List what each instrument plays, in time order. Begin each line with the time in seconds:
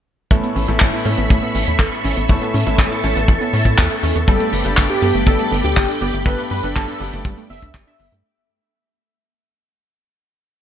0.31 analog synth bass A1, grand piano A2 B3 C#4 E4 A4, synth arpeggio sound A3, string machine A4 E5 B5 C#6, kick, closed hi-hat
0.43 synth arpeggio sound B3, closed hi-hat
0.56 analog synth bass A1, synth arpeggio sound C#4, open hi-hat
0.68 analog synth bass A1, grand piano A2 B3 C#4 E4 A4, synth arpeggio sound E4, closed hi-hat
0.80 analog synth bass A1, synth arpeggio sound A4, kick, clap, closed hi-hat
0.93 synth arpeggio sound E4, closed hi-hat
1.05 grand piano A2 B3 C#4 E4 A4, analog synth bass A2, synth arpeggio sound C#4, open hi-hat
1.17 analog synth bass A1, synth arpeggio sound B3, closed hi-hat
1.30 analog synth bass A1, synth arpeggio sound A3, kick, closed hi-hat
1.41 synth arpeggio sound B3, closed hi-hat
1.55 analog synth bass A1, synth arpeggio sound C#4, open hi-hat
1.66 analog synth bass E2, synth arpeggio sound E4, closed hi-hat
1.79 analog synth bass A1, synth arpeggio sound A4, kick, clap, closed hi-hat
1.92 synth arpeggio sound E4, closed hi-hat
2.04 analog synth bass A1, synth arpeggio sound C#4, open hi-hat
2.17 analog synth bass A1, synth arpeggio sound B3, closed hi-hat
2.28 analog synth bass A1, grand piano A2 B3 C#4 E4 A4, synth arpeggio sound A3, string machine A5, kick, closed hi-hat
2.41 synth arpeggio sound B3, closed hi-hat
2.54 analog synth bass A2, synth arpeggio sound C#4, open hi-hat
2.66 analog synth bass A1, grand piano A2 B3 C#4 E4 A4, synth arpeggio sound E4, closed hi-hat
2.78 analog synth bass A1, synth arpeggio sound A4, kick, clap, closed hi-hat
2.91 synth arpeggio sound E4, closed hi-hat
3.03 analog synth bass A1, grand piano A2 B3 C#4 E4 A4, synth arpeggio sound C#4, open hi-hat
3.16 analog synth bass A1, synth arpeggio sound B3, closed hi-hat
3.28 analog synth bass A1, synth arpeggio sound A3, kick, closed hi-hat
3.41 synth arpeggio sound B3, closed hi-hat
3.53 analog synth bass A2, synth arpeggio sound C#4, open hi-hat
3.65 analog synth bass A2, synth arpeggio sound E4, kick, closed hi-hat
3.78 analog synth bass E2, synth arpeggio sound A4, kick, clap, closed hi-hat
3.90 synth arpeggio sound E4, closed hi-hat
4.03 analog synth bass E2, synth arpeggio sound C#4, open hi-hat
4.15 analog synth bass E2, synth arpeggio sound B3, closed hi-hat
4.27 analog synth bass G1, grand piano G2 B3 D4 G4 A4, synth arpeggio sound G3, analog synth lead A4, string machine G5 B5 D6, kick, closed hi-hat
4.40 synth arpeggio sound A3, closed hi-hat
4.53 analog synth bass G1, synth arpeggio sound B3, open hi-hat
4.65 analog synth bass G1, grand piano G2 B3 D4 G4 A4, synth arpeggio sound D4, closed hi-hat
4.77 analog synth bass G1, synth arpeggio sound G4, kick, clap, closed hi-hat
4.90 synth arpeggio sound D4, analog synth lead G4, closed hi-hat
5.02 grand piano G2 B3 D4 G4 A4, analog synth bass G2, synth arpeggio sound B3, open hi-hat
5.14 analog synth bass G1, synth arpeggio sound A3, closed hi-hat
5.27 analog synth bass G1, synth arpeggio sound G3, analog synth lead A4, kick, closed hi-hat
5.38 synth arpeggio sound A3, closed hi-hat
5.52 analog synth bass G1, synth arpeggio sound B3, open hi-hat
5.64 analog synth bass D2, synth arpeggio sound D4, analog synth lead G4, closed hi-hat
5.76 analog synth bass G1, synth arpeggio sound G4, kick, clap, closed hi-hat
5.88 synth arpeggio sound D4, closed hi-hat
6.01 analog synth bass G1, synth arpeggio sound B3, analog synth lead G4, open hi-hat
6.13 analog synth bass G1, synth arpeggio sound A3, closed hi-hat
6.26 analog synth bass G1, grand piano G2 B3 D4 G4 A4, synth arpeggio sound G3, analog synth lead B4, kick, closed hi-hat
6.38 synth arpeggio sound A3, closed hi-hat
6.51 analog synth bass G2, synth arpeggio sound B3, analog synth lead B4, open hi-hat
6.63 analog synth bass G1, grand piano G2 B3 D4 G4 A4, synth arpeggio sound D4, closed hi-hat
6.75 analog synth bass G1, synth arpeggio sound G4, analog synth lead A4, kick, clap, closed hi-hat
6.88 synth arpeggio sound D4, closed hi-hat
7.00 analog synth bass G1, grand piano G2 B3 D4 G4 A4, synth arpeggio sound B3, open hi-hat
7.13 analog synth bass G1, synth arpeggio sound A3, closed hi-hat
7.25 analog synth bass G1, synth arpeggio sound G3, kick, closed hi-hat
7.37 synth arpeggio sound A3, closed hi-hat
7.50 analog synth bass G1, synth arpeggio sound B3, analog synth lead E5, open hi-hat
7.62 analog synth bass D2, synth arpeggio sound D4, kick, closed hi-hat
7.74 analog synth bass G1, synth arpeggio sound G4, kick, clap, closed hi-hat
7.87 synth arpeggio sound D4, analog synth lead E5, closed hi-hat
7.99 analog synth bass G1, synth arpeggio sound B3, open hi-hat
8.12 analog synth bass G2, synth arpeggio sound A3, closed hi-hat